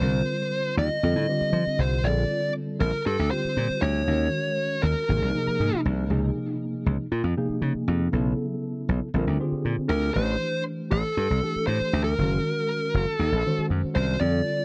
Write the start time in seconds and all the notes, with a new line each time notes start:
Already playing: C5
0.01 C2 D3 G3 C4 F4 A#4
0.77 D#2 D#5
1.03 F2 D3 G3 C4 F4 A4
1.16 A2
1.28 D3 G3 C4 F4 G4
1.41 muted slap bass stroke
1.53 F3
1.67 muted slap bass stroke
1.78 C2 C5
2.03 A#1 D3 G3 C4 F4 A4 D5
2.80 A#1 A#4
3.06 G2 A4
3.19 D2
3.31 D3 G3 C4 F4 G4 C5
3.45 muted slap bass stroke
3.57 A#2
3.70 muted slap bass stroke
3.81 D2 C#5
4.07 D#2 D#3 G#3 C#4 F#4 A#4
4.82 D#2 A#4
5.08 G#1 C3 F3 A#3 D#4 G#4
5.22 C2
5.34 C3 F3 A#3 D#4 G#4
5.47 muted slap bass stroke
5.60 G#2
5.74 muted slap bass stroke
5.85 C2
6.10 C#2 C3 F3 A#3 D#4 G#4
6.86 C#2
7.12 A#2
7.24 F2
7.37 C3 F3 A#3 D#4 G#4
7.49 muted slap bass stroke
7.62 C#3
7.74 muted slap bass stroke
7.88 F2
8.12 B1 C#3 F#3 B3 E4 A4
8.89 B1
9.14 A#1 D3 G3 C4 F4 A#4
9.27 D2
9.40 D3 C4 F4 G4 G#4
9.52 muted slap bass stroke
9.65 A#2
9.78 muted slap bass stroke
9.89 D2 A#4
10.14 A1 E3 A3 D4 G4 C5
10.91 A1 A4
11.17 G2
11.30 C2
11.42 E3 A3 D4 G4 A4
11.56 muted slap bass stroke
11.67 A2 C5
11.81 muted slap bass stroke
11.93 D2
12.04 A#4
12.18 F#1 D#3 G#3 C#4 F#4 A#4
12.94 F#1
13.08 A4
13.19 D#2
13.32 A#1
13.46 D#3 G#3 C#4 F#4 C5
13.58 muted slap bass stroke
13.70 F#2
13.84 muted slap bass stroke
13.95 C2 C5
14.20 F2 D3 G3 C4 F4 A4 D5